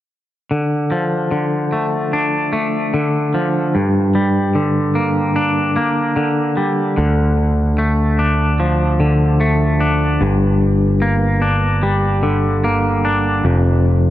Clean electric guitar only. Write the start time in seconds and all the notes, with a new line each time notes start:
0.51 D3
0.92 F3
1.31 D3
1.73 A3
2.13 D4
2.53 A3
2.94 D3
3.34 F3
3.75 G2
4.15 G3
4.55 D3
4.95 A#3
5.36 D4
5.76 A#3
6.16 D3
6.57 G3
6.97 D3
7.78 A3
8.19 D4
8.60 F3
9.00 D3
9.41 A3
9.80 D4
10.21 G2
11.02 A#3
11.42 D4
11.83 G3
12.23 D3
12.64 A#3
13.05 D4
13.45 F2